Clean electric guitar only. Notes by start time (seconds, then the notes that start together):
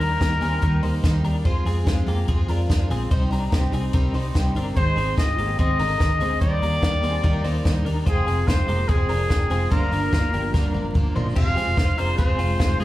0.00 D4 A#4
0.21 A#3 G4
0.42 C4 G#4
0.63 D#4 A#4
0.83 D#4 C5
1.25 D4 A#4
1.46 F4 C5
1.66 C4 G#4
1.87 G#3 F4
2.08 A#3 G4
2.29 C4 G#4
2.49 D4 A#4
2.91 C4 G#4
3.11 D#4 C5
3.32 D4 A#4
3.53 C4 G4
3.74 C4 G#4
3.94 D#4 A#4
4.15 D#4 C5
4.56 D4 A#4
4.77 D#4 C5
4.97 C4 G#4
5.18 G#3 F4
5.38 A#3 G4
5.59 C4 G#4
5.80 D3 A#4
6.21 C4 G#4
6.42 D#4 C5
6.62 D4 A#4
6.83 A#3 G4
7.03 C4 G#4
7.23 D#4 A#4
7.44 D#4 C5
7.85 D4 A#4
8.06 F4 C5
8.27 C4 G#4
8.48 G#3 F4
8.68 A#3 G4
8.89 C4 G#4
9.09 D4 A#4
9.51 C4 G#4
9.72 F4 C5
9.93 D4 A#4
10.13 A#3 F4
10.34 A#3 G4
10.54 D4 A#4
10.75 D4 A#4
11.16 D#4 C5
11.36 C4 G4
11.57 C4 G#4
11.77 F4 C5
11.98 D4 A#4
12.18 C4 G#4
12.39 G#3 F4
12.59 G#3 F4
12.80 C4 G#4